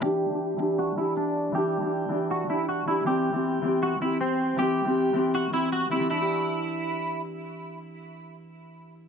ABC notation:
X:1
M:4/4
L:1/16
Q:1/4=158
K:Em
V:1 name="Clean electric guitar"
G8 F2 E2 D4 | G8 F2 E2 F2 E2 | G8 F2 E2 C4 | G8 F2 E2 F2 E2 |
E12 z4 | z16 |]
V:2 name="Harp"
[E,DG]2 z [E,DG]2 z [E,DG]3 z [E,DG]4 z2 | [E,DG]2 z [E,DG]2 z [E,DG]3 z [E,DG]3 z [E,DG] z | [E,CG]2 z [E,CG]2 z [E,CG]3 z [E,CG]4 z2 | [E,CG]2 z [E,CG]2 z [E,CG]3 z [E,CG]3 z [E,CG] z |
[E,DG]16- | [E,DG]16 |]